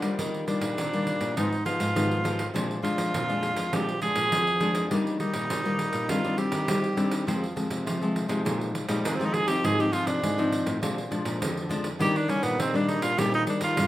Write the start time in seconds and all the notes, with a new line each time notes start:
Already playing: D3 D4
0.02 G3 A#3 F4, pandeiro
0.19 D#3, pandeiro
0.34 pandeiro
0.47 G3 A#3 D4 F4, pandeiro
0.61 A#2, pandeiro
0.77 A#2 D#3, pandeiro
0.93 G3 A#3 F4, pandeiro
1.07 pandeiro
1.20 A#2, pandeiro
1.37 G#2 F3 B3 D#4, pandeiro
1.52 pandeiro
1.65 F3 B3 D#4 F4, pandeiro
1.79 G#2, pandeiro
1.95 G#2 D#3 F3 B3 D#4, pandeiro
2.11 pandeiro
2.24 F3 B3 D#4, pandeiro
2.39 pandeiro
2.54 A#2 F3 G#3 D4, pandeiro
2.71 pandeiro
2.82 F3 G#3 D4 F4, pandeiro
2.98 F3, pandeiro
3.13 F2 A#2, pandeiro
3.28 F3 G#3 D4, pandeiro
3.43 pandeiro
3.56 F3, pandeiro
3.73 A#2 F3 G#3 D4 G4, pandeiro
3.89 pandeiro
4.01 F3 G#3 D4 G#4, pandeiro
4.16 A#2, pandeiro
4.32 F2 F3, pandeiro
4.47 pandeiro
4.61 F3 G#3 D4, pandeiro
4.75 pandeiro
4.91 D#3 G3 A#3 D4, pandeiro
5.07 pandeiro
5.20 G3 A#3 D#4, pandeiro
5.34 A#2, pandeiro
5.50 A#2 D#3, pandeiro
5.65 G3 A#3, pandeiro
5.79 pandeiro
5.93 A#2, pandeiro
6.08 D#3 G3 C4 D4 F4, pandeiro
6.24 G3 C4 D4, pandeiro
6.37 G3 C4 D4 G4, pandeiro
6.52 D#3, pandeiro
6.68 D#3 G3, pandeiro
6.84 pandeiro
6.97 G3 C4 D4, pandeiro
7.11 pandeiro
7.27 F2 F3 G#3 C4, pandeiro
7.44 pandeiro
7.56 F3 G#3 C4, pandeiro
7.70 C3, pandeiro
7.86 C3 F3, pandeiro
8.02 F3 G#3 C4, pandeiro
8.16 pandeiro
8.28 C3 F3 G#3 D#4, pandeiro
8.45 A#2, pandeiro
8.61 pandeiro
8.75 pandeiro
8.88 A#2 F3 G3 G#3 D#4, pandeiro
9.05 F2 D#3 G#3, pandeiro
9.14 C4
9.19 F3 G#3 D#4, pandeiro
9.25 D#4
9.33 G#4, pandeiro
9.47 F3 C4 D#4 G4, pandeiro
9.63 G#2 G#4, pandeiro
9.79 F3 C4 D#4 G4, pandeiro
9.92 F3 C4 D#4 F4, pandeiro
10.07 C3 D4, pandeiro
10.22 G#2, pandeiro
10.38 F3 C4 D#4, pandeiro
10.52 pandeiro
10.66 A2, pandeiro
10.82 A#2 F3 G#3 D4, pandeiro
10.98 pandeiro
11.11 F3 G#3 D4, pandeiro
11.25 A#2, pandeiro
11.41 F2 D3, pandeiro
11.57 pandeiro
11.69 F3 G#3 D4, pandeiro
11.84 pandeiro
11.99 D#3 G3 A#3 D4 G4, pandeiro
12.16 D4, pandeiro
12.28 G3 A#3 C#4 D4, pandeiro
12.43 A#2 B3, pandeiro
12.58 A#2 D#3 C4, pandeiro
12.74 G3 A#3 D4, pandeiro
12.89 D#4, pandeiro
13.02 A#2 F4, pandeiro
13.17 A#2 D#3 G3 A#3 D4 G4, pandeiro
13.34 D#4, pandeiro
13.46 G3 A#3 D4, pandeiro
13.61 D#3 F4, pandeiro
13.76 G2 A#2, pandeiro